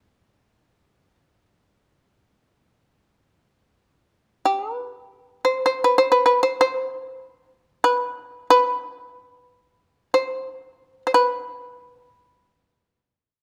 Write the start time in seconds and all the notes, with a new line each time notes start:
Already playing: B4
4.45 G4
4.76 B4
5.45 C5
5.66 C5
5.84 B4
5.98 C5
6.12 B4
6.26 B4
6.43 C5
6.61 C5
7.84 B4
8.50 B4
10.14 C5
11.07 C5
11.14 B4